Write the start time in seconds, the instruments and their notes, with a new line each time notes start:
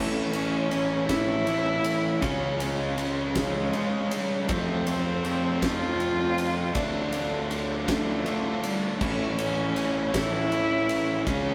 Already playing: picked electric bass A1, overdriven electric guitar A2 E3 A3 C#4 E4, cello A3
0.31 overdriven electric guitar A3 C#4 E4, cello C#4, ride
0.70 overdriven electric guitar E3 A3 C#4 E4, ride
1.07 picked electric bass A1, overdriven electric guitar A2 E3 C#4 E4, cello E4, kick, snare, ride
1.12 overdriven electric guitar A3
1.47 overdriven electric guitar E3 A3 C#4 E4, ride
1.84 overdriven electric guitar A3 C#4 E4, ride
2.21 picked electric bass C#2, overdriven electric guitar C#3 G#3 C#4 F4, cello C#4, kick, ride
2.60 overdriven electric guitar G#3 C#4 F4, ride
2.98 overdriven electric guitar C#3 G#3 C#4 F4, ride
3.28 cello G3
3.35 picked electric bass C#2, overdriven electric guitar C#3 G#3 C#4 F4, cello G#3, kick, snare, ride
3.73 overdriven electric guitar C#3 G#3 C#4 F4, ride
4.11 cello G3, overdriven electric guitar G#3 C#4 F4, ride
4.47 picked electric bass F2, overdriven electric guitar F3 A3 C4 F4, cello A3, kick, ride
4.86 overdriven electric guitar A3 C4 F4, cello C4, ride
5.24 overdriven electric guitar F3 A3 C4 F4, ride
5.62 picked electric bass F2, overdriven electric guitar F3 A3 C4 F4, cello F4, kick, snare, ride
5.99 overdriven electric guitar F3 A3 C4 F4, ride
6.38 overdriven electric guitar A3 C4 F4, ride
6.74 picked electric bass D2, overdriven electric guitar D3 A3 D4 F4, cello D4, kick, ride
7.13 overdriven electric guitar A3 D4 F4, ride
7.51 overdriven electric guitar D3 A3 D4 F4, ride
7.87 picked electric bass D2, overdriven electric guitar D3 D4 F4, cello A3, kick, snare, ride
7.91 overdriven electric guitar A3
8.26 overdriven electric guitar D3 A3 D4 F4, ride
8.63 cello G3, overdriven electric guitar A3 D4 F4, ride
8.94 cello G3
9.01 picked electric bass A1, overdriven electric guitar A2 E3 A3 C#4 E4, cello A3, kick, crash
9.38 overdriven electric guitar A3 C#4 E4, cello C#4, ride
9.75 overdriven electric guitar E3 A3 C#4 E4, ride
10.14 picked electric bass A1, overdriven electric guitar A2 E3 A3 C#4 E4, cello E4, kick, snare, ride
10.52 overdriven electric guitar E3 A3 C#4 E4, ride
10.89 overdriven electric guitar A3 C#4 E4, ride
11.26 picked electric bass C#2, overdriven electric guitar C#3 G#3 C#4 F4, cello C#4, kick, ride